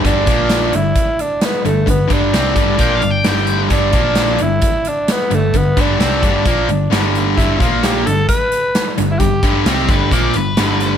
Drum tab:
HH |x-x-x-x-x-x-x-x-|x-x-x-x-x-x-x-x-|x-x-x-x-x-x-x-x-|x-x-x-x-x-x-x-x-|
SD |----o-------o---|----o-------oo--|----o-------o---|----o-------o---|
BD |o-o-----o-------|o-o---o-o-------|o-o-----o-------|o-o---o-o-------|

HH |x-x-x-x-x-x-x-x-|x-x-x-x-x-x-x-x-|
SD |----o-------o---|----o-------o---|
BD |o-o-----o-------|o-o---o-o-------|